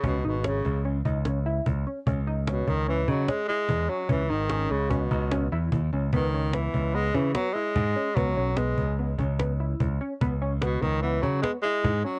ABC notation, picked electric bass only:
X:1
M:5/4
L:1/8
Q:1/4=147
K:C#m
V:1 name="Picked electric bass" clef=bass
C,, G,,,2 C,,2 C,,3 C,, z | C,,3 C,,2 C, z2 E,, z | C,, G,,,2 C,,2 C,,2 E,, D,, C,, | C,,3 C,,2 C, z2 G,, z |
C,, B,,,2 C,,2 C,,3 C,, z | C,,3 C,,2 C, z2 G,, z |]